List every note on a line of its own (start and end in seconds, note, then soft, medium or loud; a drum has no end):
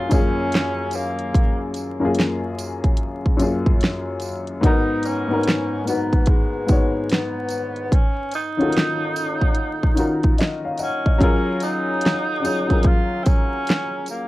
0.00 0.09 F#2 loud
0.00 0.10 A#3 medium
0.00 0.12 C#4 loud
0.00 0.13 F4 loud
0.00 0.14 F4 loud
0.00 0.14 G#4 loud
0.09 1.27 F#2 medium
0.09 1.28 A#3 medium
0.09 1.29 C#4 medium
0.09 0.97 C#4 loud
0.09 1.29 F4 medium
0.09 kick medium
0.09 closed hi-hat medium
0.09 tambourine soft
0.14 1.30 G#4 loud
0.52 snare loud
0.52 clap medium
0.52 closed hi-hat medium
0.91 1.76 A#3 medium
0.91 closed hi-hat medium
0.91 tambourine medium
1.19 closed hi-hat soft
1.34 kick loud
1.34 closed hi-hat medium
1.74 closed hi-hat medium
1.74 tambourine soft
2.00 2.96 F#2 medium
2.00 2.97 A#3 medium
2.00 2.97 C#4 medium
2.00 2.98 F4 medium
2.05 2.99 G#4 medium
2.15 closed hi-hat medium
2.20 snare loud
2.20 clap medium
2.59 closed hi-hat medium
2.59 tambourine medium
2.84 kick medium
2.84 closed hi-hat soft
2.97 closed hi-hat medium
3.26 kick medium
3.37 4.26 F#2 medium
3.37 4.26 A#3 medium
3.37 4.27 C#4 medium
3.37 closed hi-hat medium
3.37 tambourine soft
3.41 4.28 F4 medium
3.41 4.28 G#4 medium
3.66 kick medium
3.81 snare loud
3.81 clap medium
3.81 closed hi-hat medium
4.20 closed hi-hat medium
4.20 tambourine medium
4.47 closed hi-hat soft
4.61 5.06 G#2 loud
4.61 5.06 B3 loud
4.61 5.07 D#4 medium
4.61 5.08 F#4 loud
4.61 kick loud
4.61 closed hi-hat medium
4.65 5.08 D#4 medium
4.65 5.08 A#4 loud
5.03 5.87 C#4 loud
5.03 closed hi-hat medium
5.03 tambourine soft
5.28 5.72 G#2 medium
5.28 5.72 B3 medium
5.28 5.73 D#4 medium
5.28 5.74 F#4 medium
5.33 5.74 A#4 loud
5.43 closed hi-hat medium
5.48 snare loud
5.48 clap loud
5.84 6.47 G#2 medium
5.84 6.48 B3 medium
5.84 6.31 B3 medium
5.84 6.49 D#4 medium
5.84 closed hi-hat medium
5.84 tambourine medium
5.88 6.49 F#4 medium
5.88 6.50 B4 medium
6.13 kick medium
6.13 closed hi-hat soft
6.26 7.11 G#3 medium
6.26 kick loud
6.26 closed hi-hat medium
6.67 7.85 G#2 medium
6.67 7.86 B3 medium
6.67 7.86 D#4 medium
6.67 7.87 F#4 medium
6.67 kick loud
6.67 closed hi-hat medium
6.67 tambourine soft
6.72 7.87 C#5 medium
7.09 7.95 B3 medium
7.09 snare loud
7.09 clap medium
7.09 closed hi-hat medium
7.49 closed hi-hat medium
7.49 tambourine medium
7.76 closed hi-hat soft
7.92 8.34 C#4 loud
7.92 kick loud
7.92 closed hi-hat medium
8.31 10.53 D#4 loud
8.31 closed hi-hat medium
8.31 tambourine soft
8.57 9.54 D#3 medium
8.57 9.54 C#4 medium
8.57 9.55 F4 medium
8.57 9.56 F#4 medium
8.57 closed hi-hat soft
8.62 8.65 A4 medium
8.69 9.59 A#4 medium
8.69 closed hi-hat medium
8.77 snare loud
8.77 clap medium
9.16 closed hi-hat medium
9.16 tambourine medium
9.41 kick medium
9.55 closed hi-hat medium
9.83 kick medium
9.94 10.83 D#3 medium
9.94 10.84 C#4 medium
9.94 10.85 F4 medium
9.94 closed hi-hat medium
9.94 tambourine medium
9.98 10.85 F#4 medium
9.98 10.86 A#4 medium
10.23 kick medium
10.23 closed hi-hat soft
10.38 10.63 D#5 medium
10.38 snare loud
10.38 clap loud
10.38 closed hi-hat medium
10.65 10.79 C#5 medium
10.65 10.79 F5 medium
10.78 11.19 C#4 loud
10.78 11.04 D#5 medium
10.78 11.04 F#5 medium
10.78 closed hi-hat medium
10.78 tambourine medium
11.06 11.45 D#5 medium
11.06 kick medium
11.18 12.07 F#3 loud
11.18 12.07 C#4 loud
11.18 11.60 C#4 medium
11.18 12.08 F4 loud
11.18 12.09 G#4 loud
11.18 kick loud
11.18 closed hi-hat medium
11.23 12.09 A#4 loud
11.60 12.88 D#4 loud
11.60 closed hi-hat medium
11.60 tambourine soft
12.01 closed hi-hat medium
12.06 snare loud
12.06 clap medium
12.40 12.60 F#3 medium
12.40 12.61 C#4 medium
12.40 12.62 F4 medium
12.44 12.62 G#4 medium
12.44 12.63 C#5 medium
12.44 closed hi-hat medium
12.44 tambourine medium
12.67 13.81 F#3 medium
12.67 13.82 C#4 medium
12.67 13.83 F4 medium
12.67 kick medium
12.67 closed hi-hat soft
12.71 13.83 G#4 medium
12.71 13.84 A#4 medium
12.83 13.25 F4 loud
12.83 kick loud
12.83 closed hi-hat medium
13.23 13.29 C4 medium
13.23 kick loud
13.23 closed hi-hat medium
13.23 tambourine soft
13.27 14.09 C#4 loud
13.67 snare loud
13.67 clap loud
13.67 closed hi-hat medium
14.06 14.28 A#3 medium
14.06 closed hi-hat medium
14.06 tambourine medium